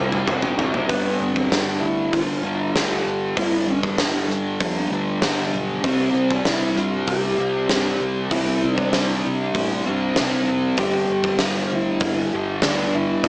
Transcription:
0.00 0.21 C2 medium
0.00 0.27 C3 medium
0.00 0.29 G3 medium
0.00 0.30 C4 medium
0.12 mid tom medium
0.27 0.52 C2 medium
0.27 0.57 C3 medium
0.27 0.58 G3 loud
0.27 0.60 C4 loud
0.27 mid tom loud
0.42 floor tom medium
0.58 0.82 F#1 medium
0.58 0.88 C3 medium
0.58 0.76 G3 medium
0.58 0.73 C4 medium
0.58 floor tom loud
0.74 0.90 G3 medium
0.74 0.88 C4 medium
0.74 floor tom medium
0.89 1.17 G1 medium
0.89 2.42 G2 medium
0.89 2.43 D3 medium
0.89 2.42 G3 loud
0.89 1.22 B3 medium
0.89 kick loud
0.89 open hi-hat soft
1.19 1.48 G1 medium
1.19 1.52 C4 medium
1.36 kick medium
1.50 1.79 G1 medium
1.50 1.83 D4 medium
1.50 snare loud
1.50 open hi-hat medium
1.80 2.10 D2 medium
1.80 2.14 E4 loud
2.12 2.41 G1 medium
2.12 3.39 F4 loud
2.12 kick loud
2.12 open hi-hat medium
2.43 2.71 G1 medium
2.43 2.72 G2 medium
2.43 2.74 D3 medium
2.43 2.77 G3 medium
2.73 3.03 D2 medium
2.73 3.35 G2 medium
2.73 3.36 D3 medium
2.73 3.39 G3 medium
2.73 snare loud
2.73 open hi-hat medium
3.05 3.33 G1 medium
3.36 3.65 G1 medium
3.36 4.90 G2 loud
3.36 4.91 D3 medium
3.36 4.90 G3 loud
3.36 3.70 E4 medium
3.36 kick loud
3.36 open hi-hat medium
3.67 3.95 G2 medium
3.67 5.51 D4 medium
3.83 kick medium
3.98 4.26 G1 medium
3.98 snare loud
3.98 open hi-hat medium
4.28 4.57 G2 medium
4.28 snare soft
4.60 4.88 F2 medium
4.60 kick loud
4.60 open hi-hat medium
4.90 5.19 D2 medium
4.90 5.20 G2 medium
4.90 5.22 D3 medium
4.90 5.24 G3 medium
5.21 5.49 G1 medium
5.21 5.82 G2 medium
5.21 5.82 D3 medium
5.21 5.84 G3 medium
5.21 snare loud
5.21 open hi-hat medium
5.53 5.81 B1 medium
5.82 6.12 C2 loud
5.82 7.36 C3 medium
5.82 7.39 G3 medium
5.82 6.48 C4 medium
5.82 7.37 C4 loud
5.82 kick loud
5.82 open hi-hat medium
6.14 6.42 C2 medium
6.30 kick medium
6.45 6.73 C2 medium
6.45 6.78 E4 loud
6.45 snare loud
6.45 open hi-hat medium
6.76 7.04 G2 medium
6.76 7.09 F4 loud
6.76 snare soft
7.07 7.35 C2 medium
7.07 8.35 G4 loud
7.07 kick loud
7.07 open hi-hat medium
7.38 7.66 C2 medium
7.38 7.67 C3 medium
7.38 7.70 G3 medium
7.38 7.68 C4 medium
7.68 7.97 G2 medium
7.68 8.29 C3 medium
7.68 8.32 G3 medium
7.68 8.31 C4 medium
7.68 snare loud
7.68 open hi-hat medium
8.00 8.28 C2 medium
8.30 8.59 C2 medium
8.30 9.83 C3 medium
8.30 9.88 G3 medium
8.30 9.85 C4 loud
8.30 8.63 E4 loud
8.30 kick loud
8.30 open hi-hat medium
8.63 8.91 C3 medium
8.63 10.44 D4 medium
8.78 kick medium
8.93 9.21 C2 medium
8.93 snare loud
8.93 open hi-hat medium
9.26 9.52 C3 medium
9.55 9.82 A2 loud
9.55 kick loud
9.55 open hi-hat medium
9.86 10.14 G2 medium
9.86 10.16 C3 medium
9.86 10.18 G3 medium
9.86 10.15 C4 medium
10.16 10.46 C2 medium
10.16 10.77 C3 medium
10.16 10.80 G3 medium
10.16 10.78 C4 medium
10.16 snare loud
10.16 open hi-hat medium
10.48 10.75 F1 medium
10.77 11.05 G1 medium
10.77 12.30 G2 loud
10.77 12.31 D3 medium
10.77 12.31 G3 loud
10.77 11.43 G4 loud
10.77 kick loud
10.77 open hi-hat medium
11.10 11.37 G1 medium
11.24 kick medium
11.39 11.68 G1 loud
11.39 snare loud
11.39 open hi-hat medium
11.43 11.73 F4 medium
11.71 11.98 D2 medium
11.71 12.31 E4 medium
12.00 12.28 G1 medium
12.00 kick loud
12.00 open hi-hat soft
12.32 12.60 G1 medium
12.32 12.61 G2 medium
12.32 12.63 D3 medium
12.32 12.61 G3 medium
12.62 12.90 D2 medium
12.62 13.23 G2 medium
12.62 13.24 D3 medium
12.62 12.95 D4 medium
12.62 snare loud
12.62 open hi-hat medium
12.66 13.25 G3 medium
12.95 13.22 G1 medium
12.95 13.26 E4 medium
13.24 13.28 G1 medium
13.24 13.28 G2 medium
13.24 13.28 F4 medium
13.24 kick loud
13.24 open hi-hat medium

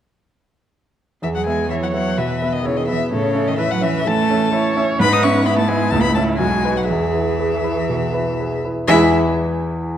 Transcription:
1.22 2.15 E2 soft
1.22 1.28 E3 soft
1.22 1.67 G#4 soft
1.22 1.28 E5 medium
1.35 1.45 F#3 soft
1.35 1.47 F#5 soft
1.46 1.69 G#3 soft
1.46 1.68 B3 soft
1.46 1.68 E5 soft
1.46 1.70 G#5 medium
1.70 1.83 E3 soft
1.70 1.92 E4 soft
1.70 2.20 C#5 soft
1.70 1.75 E5 soft
1.70 1.92 E5 soft
1.81 1.92 F#3 soft
1.81 1.88 F#5 soft
1.93 2.19 F#3 soft
1.93 2.16 B3 soft
1.93 2.16 E5 soft
1.93 2.20 F#5 medium
2.17 2.56 B2 soft
2.17 2.55 E3 soft
2.17 2.65 B4 soft
2.17 2.54 E5 medium
2.42 2.63 B3 soft
2.42 2.63 E5 soft
2.53 2.67 D#3 soft
2.53 2.67 D#5 medium
2.64 2.79 C#3 soft
2.64 2.85 E4 soft
2.64 3.11 G#4 medium
2.64 2.78 C#5 medium
2.64 2.86 E5 soft
2.77 2.89 D#3 soft
2.77 2.88 D#5 medium
2.88 2.98 E3 medium
2.88 3.09 B3 soft
2.88 3.11 E5 medium
2.88 3.09 E5 soft
3.11 4.05 A2 soft
3.11 3.50 C#3 medium
3.11 3.60 A4 medium
3.11 3.49 C#5 medium
3.34 3.56 C#4 soft
3.34 3.56 E5 soft
3.48 3.60 D#3 soft
3.48 3.58 D#5 medium
3.57 3.70 E3 medium
3.57 3.80 E4 soft
3.57 4.07 B4 medium
3.57 3.80 E5 soft
3.57 3.73 E5 medium
3.71 3.84 F#3 medium
3.71 3.84 F#5 medium
3.81 4.07 E3 medium
3.81 4.04 C#4 soft
3.81 4.04 E5 soft
3.81 4.09 E5 medium
4.07 4.45 E3 soft
4.07 4.77 A3 medium
4.07 4.53 A4 medium
4.07 4.78 A5 medium
4.30 4.52 C#4 soft
4.30 4.51 E5 medium
4.52 4.74 E4 soft
4.52 5.01 C#5 medium
4.52 4.75 E5 medium
4.76 4.98 C#4 medium
4.76 4.98 E5 medium
4.99 5.89 G#2 medium
4.99 5.10 B3 medium
4.99 5.46 B4 medium
4.99 5.14 B5 loud
5.11 5.25 D#4 medium
5.11 5.25 D#6 medium
5.22 5.43 B3 soft
5.22 5.48 C#4 medium
5.22 5.44 E5 medium
5.22 5.48 C#6 medium
5.46 5.59 B3 medium
5.46 5.67 E4 medium
5.46 6.40 E4 medium
5.46 5.67 E5 medium
5.46 5.58 B5 medium
5.57 5.70 A3 medium
5.57 5.70 A5 medium
5.68 5.91 G#3 medium
5.68 5.90 B3 soft
5.68 5.90 E5 medium
5.68 5.92 G#5 medium
5.90 6.38 C#2 medium
5.90 6.03 A3 medium
5.90 6.02 A5 loud
6.02 6.13 B3 medium
6.02 6.14 B5 medium
6.13 6.39 A3 medium
6.13 6.38 C#4 soft
6.13 6.38 E5 medium
6.13 6.23 A5 medium
6.38 6.88 B1 medium
6.38 6.77 G#3 medium
6.38 6.89 F#4 medium
6.38 6.79 G#5 medium
6.64 6.87 D#4 soft
6.64 6.87 B4 soft
6.76 6.91 F#3 medium
6.76 6.87 F#5 medium
6.88 7.86 E2 medium
6.88 8.64 E3 medium
6.88 8.61 G#4 medium
6.88 8.60 E5 medium
7.14 7.37 E4 soft
7.14 7.37 B4 soft
7.39 7.62 G#4 soft
7.39 7.62 B4 soft
7.64 7.86 E4 soft
7.64 7.87 B4 soft
7.89 8.29 B2 soft
8.13 8.36 E4 soft
8.13 8.37 B4 soft
8.40 8.62 G#4 soft
8.40 8.63 B4 soft
8.65 8.87 E4 soft
8.65 8.87 B4 soft
8.88 9.16 E2 medium
8.88 9.16 E3 medium
8.88 9.16 G#3 medium
8.88 9.15 E4 medium
8.88 9.16 E4 medium
8.88 9.16 G#4 medium
8.88 9.16 B4 medium
8.88 9.15 E5 medium
8.88 9.16 G#5 medium

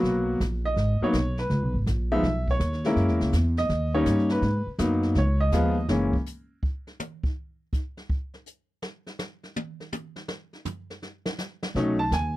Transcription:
0.00 0.40 B1 medium
0.00 0.39 F#3 medium
0.00 0.39 A#3 medium
0.00 0.40 B3 medium
0.00 0.40 F#4 medium
0.00 brush sweep soft
0.00 kick soft
0.00 snare soft
0.40 0.76 A#1 medium
0.40 kick soft
0.40 snare medium
0.40 hi-hat pedal medium
0.65 0.99 D#5 medium
0.76 0.99 G#1 medium
0.76 brush sweep medium
0.76 kick soft
0.76 snare soft
1.01 1.13 F#3 medium
1.01 1.14 A#3 medium
1.01 1.14 B3 medium
1.01 1.14 D#4 medium
1.01 1.37 C#5 medium
1.01 muted upright bass stroke soft
1.13 1.49 B1 medium
1.13 kick soft
1.13 snare medium
1.13 hi-hat pedal medium
1.37 1.73 B4 medium
1.37 snare soft
1.50 1.62 C#2 medium
1.50 brush sweep soft
1.50 kick soft
1.50 snare soft
1.62 1.73 B1 medium
1.74 1.86 G#1 medium
1.86 2.22 A#1 medium
1.86 kick soft
1.86 snare medium
1.86 hi-hat pedal medium
2.12 2.23 F3 medium
2.12 2.23 G#3 medium
2.12 2.23 B3 medium
2.12 2.23 D#4 medium
2.12 2.46 E5 loud
2.23 2.59 B1 medium
2.23 brush sweep soft
2.23 kick soft
2.23 snare soft
2.48 2.84 C#5 medium
2.48 kick medium
2.60 2.95 D#2 medium
2.60 kick soft
2.60 snare medium
2.60 hi-hat pedal medium
2.73 snare soft
2.84 3.32 G#3 medium
2.84 3.32 A#3 medium
2.84 3.32 C#4 medium
2.84 3.32 E4 medium
2.84 3.20 A#4 medium
2.84 snare soft
2.96 3.09 F#2 medium
2.96 brush sweep soft
2.96 kick soft
2.96 snare soft
3.08 3.21 E2 medium
3.08 snare soft
3.20 3.32 C#2 medium
3.20 snare soft
3.33 3.69 E2 medium
3.33 snare medium
3.33 hi-hat pedal medium
3.57 3.92 D#5 loud
3.57 snare soft
3.69 4.05 D#2 medium
3.69 brush sweep medium
3.69 kick soft
3.69 snare medium
3.94 4.41 G3 medium
3.94 4.41 A#3 medium
3.94 4.41 C#4 medium
3.94 4.41 D#4 medium
3.94 4.28 C#5 medium
4.06 4.41 G2 medium
4.06 kick soft
4.06 snare medium
4.06 hi-hat pedal medium
4.18 snare soft
4.29 4.65 B4 medium
4.29 snare soft
4.42 4.65 G#2 medium
4.42 brush sweep medium
4.42 kick soft
4.42 snare soft
4.67 muted upright bass stroke soft
4.78 5.15 F#2 medium
4.78 5.16 F#3 medium
4.78 5.16 A#3 medium
4.78 5.16 B3 medium
4.78 5.16 D#4 medium
4.78 kick soft
4.78 snare medium
4.78 hi-hat pedal medium
5.03 snare soft
5.15 5.51 C#2 medium
5.15 5.41 C#5 medium
5.15 brush sweep medium
5.15 kick soft
5.15 snare medium
5.40 5.86 D#5 medium
5.52 5.88 D#2 medium
5.52 5.75 F3 medium
5.52 5.75 G#3 medium
5.52 5.75 B3 medium
5.52 5.75 F4 medium
5.52 kick soft
5.52 snare medium
5.52 hi-hat pedal medium
5.89 6.12 F#1 medium
5.89 6.13 E3 medium
5.89 6.14 G#3 medium
5.89 6.14 A#3 medium
5.89 6.14 C#4 medium
5.89 snare loud
6.13 kick medium
6.26 hi-hat pedal medium
6.63 kick medium
6.87 snare soft
7.00 hi-hat pedal medium
7.00 high tom loud
7.23 kick medium
7.73 kick medium
7.73 hi-hat pedal medium
7.97 snare medium
8.09 kick medium
8.34 snare soft
8.46 hi-hat pedal medium
8.82 snare loud
9.06 snare soft
9.19 snare loud
9.19 hi-hat pedal medium
9.43 snare soft
9.56 high tom loud
9.80 snare soft
9.92 hi-hat pedal medium
9.92 high tom loud
10.16 snare medium
10.28 snare medium
10.53 snare soft
10.65 floor tom loud
10.65 hi-hat pedal medium
10.90 snare medium
11.02 snare medium
11.25 snare medium
11.38 snare loud
11.38 hi-hat pedal medium
11.63 snare loud
11.75 12.10 B1 medium
11.75 11.97 F#3 medium
11.75 11.97 A3 medium
11.75 11.97 C#4 medium
11.75 11.98 D#4 medium
11.75 brush sweep soft
11.75 kick soft
11.75 snare soft
11.99 12.11 A5 loud
12.11 12.37 D#2 medium
12.11 12.36 G#5 medium
12.11 snare medium
12.11 hi-hat pedal medium

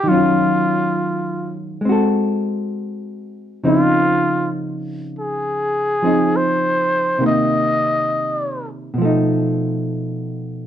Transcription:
0.04 1.83 D#3 soft
0.04 1.81 F#3 medium
0.08 1.85 C#4 soft
0.08 1.56 F4 medium
0.14 1.88 F4 medium
1.81 3.62 G#3 soft
1.85 3.64 C4 soft
1.85 3.65 F#4 medium
1.92 3.67 A4 medium
3.64 7.18 C#3 soft
3.64 6.01 F3 soft
3.64 6.03 C4 soft
3.64 6.04 D#4 soft
3.69 4.51 F4 medium
5.19 6.38 G#4 medium
6.02 7.19 F3 soft
6.02 7.20 C4 soft
6.02 7.21 D#4 soft
6.36 7.22 C5 medium
7.18 8.93 C3 soft
7.18 8.97 D#3 soft
7.18 8.97 A#3 soft
7.26 8.67 D#5 medium
8.94 10.67 B2 soft
8.98 10.67 F3 soft
8.98 10.67 A3 medium
9.05 10.67 D#4 soft

